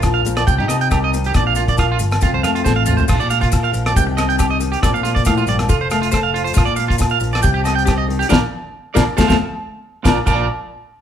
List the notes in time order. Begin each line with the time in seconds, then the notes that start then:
Already playing: A#1 A#2 F3 A#3 D4
0.02 F4, kick, cross-stick, closed hi-hat, low agogo, maracas
0.14 F5
0.25 A#1 F3 A#3, closed hi-hat, maracas
0.37 D5, cross-stick, closed hi-hat, low agogo
0.47 C2 C3 C4 G5, kick, closed hi-hat, maracas
0.58 G2 D#4 G4
0.68 C3 C4 D#5, cross-stick, closed hi-hat, low agogo, maracas
0.81 G5, closed hi-hat
0.91 C2 G4 A#4, kick, cross-stick, closed hi-hat, low agogo, maracas
1.04 D#5
1.13 D#3 C4, closed hi-hat, maracas
1.24 G4, closed hi-hat, maracas
1.34 A#1 A#2 D4 D5, kick, cross-stick, closed hi-hat, low agogo, maracas
1.47 F5
1.55 A#3 F4, closed hi-hat, maracas
1.68 A#1 D5, kick, closed hi-hat, maracas
1.77 F4 F5, kick, cross-stick, closed hi-hat, low agogo, maracas
1.92 F4
1.99 G1 A#3, closed hi-hat, maracas
2.11 cross-stick, closed hi-hat, low agogo, maracas
2.21 F1 F2 C4 F4, kick, closed hi-hat, maracas
2.33 C2 C5
2.43 F2 A3 F5, cross-stick, closed hi-hat, low agogo, maracas
2.55 F4, closed hi-hat, maracas
2.64 A1 A4 C5, kick, snare, low agogo, maracas
2.76 F5
2.86 F3 A3 F4, mid tom, maracas
2.97 C5, floor tom, maracas
3.08 A#1 A#2 F4, muted nylon-string guitar stroke, kick, cross-stick, crash, low agogo, maracas
3.20 A#2 D5, maracas
3.30 A#3 F5, closed hi-hat, maracas
3.41 F4, kick, closed hi-hat, maracas
3.52 F4, kick, cross-stick, closed hi-hat, low agogo, maracas
3.64 F5, maracas
3.73 A#1 F3, closed hi-hat, maracas
3.86 D5, cross-stick, closed hi-hat, low agogo, maracas
3.96 C2 C3 D#3 C4 G4 G5, muted nylon-string guitar stroke, kick, closed hi-hat, maracas
4.07 muted clean electric guitar stroke
4.17 C4 D#5, cross-stick, closed hi-hat, low agogo, maracas
4.29 G5, closed hi-hat
4.39 G4, kick, cross-stick, closed hi-hat, low agogo, maracas
4.50 D#5
4.59 D#3, closed hi-hat, maracas
4.72 G4, closed hi-hat, maracas
4.83 A#1 A#2 F3 A#3 D4 F4 D5, kick, cross-stick, closed hi-hat, low agogo, maracas
4.94 A#2 F5, maracas
5.03 A#3 F4, closed hi-hat, maracas
5.15 D5, kick, closed hi-hat, maracas
5.25 A2 F5, kick, cross-stick, closed hi-hat, low agogo, maracas
5.37 F4, maracas
5.47 A#1 G2 D5, closed hi-hat, maracas
5.59 cross-stick, closed hi-hat, low agogo, maracas
5.68 F1 F4 A4, muted nylon-string guitar stroke, kick, closed hi-hat, maracas
5.81 C5
5.91 A3 F5, cross-stick, closed hi-hat, low agogo, maracas
6.02 F4, closed hi-hat
6.11 A4 C5, kick, cross-stick, closed hi-hat, low agogo, maracas
6.23 F5
6.34 F3 F4, closed hi-hat
6.44 C5, closed hi-hat, maracas
6.54 A#1 A#2 F4, kick, low agogo, maracas
6.58 cross-stick, closed hi-hat
6.65 A#2 D5, maracas
6.76 A#3 F5, closed hi-hat, maracas
6.88 F4, kick, closed hi-hat
6.98 F4, kick, cross-stick, closed hi-hat, low agogo, maracas
7.09 F5, maracas
7.20 A#1 F3, closed hi-hat, maracas
7.32 D5, cross-stick, closed hi-hat, low agogo, maracas
7.42 C2 C3 G4 G5, kick, closed hi-hat, maracas
7.54 G4
7.64 C4 D#5, cross-stick, closed hi-hat, low agogo, maracas
7.75 G5, closed hi-hat
7.85 G4, kick, cross-stick, closed hi-hat, low agogo, maracas
7.98 D#5
8.08 D#3, closed hi-hat
8.19 G4, closed hi-hat, maracas
8.29 A#1 F3 A#3 D4 A#4 D5 F5, kick, snare, low agogo, maracas
8.94 A#1 F3 A#3 D4 A#4 D5 F5, kick, snare, low agogo, maracas
9.17 F2 F3 A3 C4 A4 C5 F5, kick, snare, low agogo, maracas
9.27 F2 F3 A3 C4 A4 C5 F5, kick, snare, low agogo, maracas
10.04 A#1 A#2 F3 A#3 D4 F4 A#4 D5, muted nylon-string guitar stroke, kick, snare, low agogo, maracas
10.26 A#1 A#2 F3 A#3 D4 F4 A#4 D5, muted nylon-string guitar stroke, kick, crash, low agogo, maracas